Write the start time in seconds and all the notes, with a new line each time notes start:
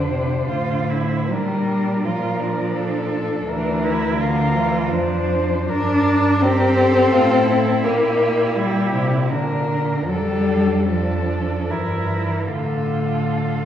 Already playing: F2 D4 C5
0.10 C3
0.47 A2 D3 F4
0.90 E4
1.30 A#2 G3 D4 A#4
1.70 D4
2.04 F3 F4 A#4
2.41 D4
2.76 A4
3.47 D2 E3 D4 A#4
3.85 E4
4.18 D3 F4 A#4
4.54 E3
4.90 F2 F3 D4 C5
5.69 G2 D4 A#4
6.42 C4 G4 A#4
6.78 A4
7.12 A2 F4
7.49 E4
7.84 A#2 A#3 G4
8.57 G3 G4
8.94 C3
9.30 D3 D4 A#4
10.10 F2 G3 D4 A4
10.89 F3 D4 A4
11.70 G2 E3 E4 A#4
11.79 F3
11.88 E3
11.96 F3
12.05 E3
12.14 F3
12.23 E3
12.54 A2 D3 F4 A4